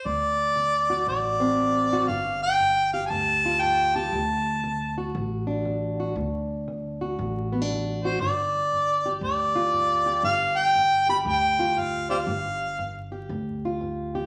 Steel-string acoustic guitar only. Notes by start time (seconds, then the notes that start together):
0.06 D2
0.56 D2
0.90 F#4
1.08 D2
1.40 C4
1.57 D2
1.93 F#4
2.09 G2
2.60 G2
2.94 G4
3.12 G2
3.46 F4
3.62 G2
3.96 G4
4.13 D2
4.64 D2
4.98 F#4
5.15 D2
5.47 D4
5.65 D2
6.00 F#4
6.17 D2
6.68 D2
7.01 F#4
7.19 D2
7.52 B3
7.62 D4
7.72 D2
8.05 F#4
8.22 G2
8.72 G2
9.06 G4
9.21 G2
9.55 F4
9.73 G2
10.06 G4
10.24 G2
10.76 G2
11.09 G4
11.26 G2
11.59 F4
11.77 G2
12.11 G4
12.28 G2
12.79 G2
13.12 G4
13.30 G2
13.65 F4
13.81 G2
14.15 G4